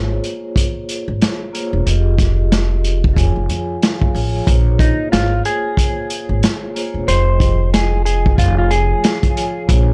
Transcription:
Already playing: G#1 A#3 F4 G#4 C5 C#5
0.24 closed hi-hat
0.56 kick, closed hi-hat
0.89 closed hi-hat
1.08 G#1
1.22 snare, closed hi-hat
1.53 A#3 F4 G#4 C5 C#5, closed hi-hat
1.73 E1
1.86 F1 F3 F4 G4 G#4 D#5, closed hi-hat
2.19 kick, snare, closed hi-hat
2.52 snare, closed hi-hat
2.84 closed hi-hat
3.04 kick
3.13 F1 F3 F4 G#4 C#5 G#5, kick
3.18 closed hi-hat
3.36 F1
3.49 F2 G#5, closed hi-hat
3.82 F5, snare, closed hi-hat
4.02 F1, kick
4.14 A1 F3 F4 G#4 C#5 G#5, open hi-hat
4.45 A#1 A#3 F4 G#4 C5 C#5, kick, closed hi-hat
4.79 D#4, kick, closed hi-hat
5.12 G#1 F4, snare, closed hi-hat
5.45 G#4, closed hi-hat
5.77 kick, closed hi-hat
6.10 closed hi-hat
6.29 G#1
6.43 snare, closed hi-hat
6.75 A#3 F4 G#4 C5 C#5, closed hi-hat
6.94 E1
7.07 F1 F3 F4 G#4 C5 D#5 G5, closed hi-hat
7.40 kick, closed hi-hat
7.74 G#4, snare, closed hi-hat
8.05 G#4, closed hi-hat
8.26 kick
8.35 F1 F3 F4 G#4 C#5 G#5, kick
8.39 closed hi-hat
8.58 F4
8.71 G#4, closed hi-hat
9.04 F5, snare, closed hi-hat
9.23 kick, closed hi-hat
9.36 F3 F4 G#4 C#5 G#5, closed hi-hat
9.67 A#1 A#3 F4 G#4 C5 C#5, kick, closed hi-hat

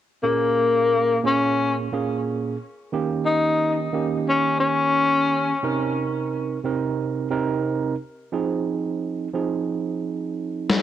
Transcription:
0.23 A#2 A#3 C#4 G#4
1.23 A#2 A#3 C#4 G#4
1.92 A#2 A#3 C#4 G#4
2.92 D#3 A#3 C#4 G4
3.26 D#4
3.93 D#3 A#3 C#4 G4
4.29 C#4
4.60 C#4
5.63 C3 C4 D#4 A#4
6.64 C3 C4 D#4 A#4
7.30 C3 C4 D#4 A#4
8.32 F3 C4 D#4 G#4
9.33 F3 C4 D#4 G#4
10.70 snare

